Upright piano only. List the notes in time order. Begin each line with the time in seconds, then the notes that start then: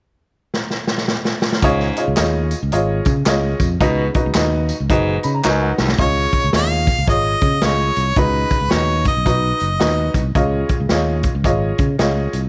1.63 C#3 F4 G#4 C#5 D#5
1.96 F4 G#4 C#5 D#5
2.16 F4 G#4 C#5 D#5
2.72 F4 G#4 C#5 D#5
3.26 F4 G#4 C#5 D#5
3.81 C#3 D#4 F#4 B4 D#5
4.15 D#4 F#4 B4 D#5
4.35 D#4 F#4 B4 D#5
4.90 D#4 F#4 B4 D#5
5.24 B5
5.34 A#5
5.44 D#4 F#4 B4 D#5 G#5
5.62 F#5
5.98 C#3 F4 G#4 C#5 D#5
6.53 F4 G#4 C#5 D#5
7.07 F4 G#4 C#5 D#5
7.62 F4 G#4 C#5 D#5
8.17 C#3 D#4 F#4 B4 D#5
8.71 D#4 F#4 B4 D#5
9.25 D#4 F#4 B4 D#5
9.80 D#4 F#4 B4 D#5
10.35 C#3 F4 G#4 C#5 D#5
10.90 F4 G#4 C#5 D#5
11.44 F4 G#4 C#5 D#5
11.98 F4 G#4 C#5 D#5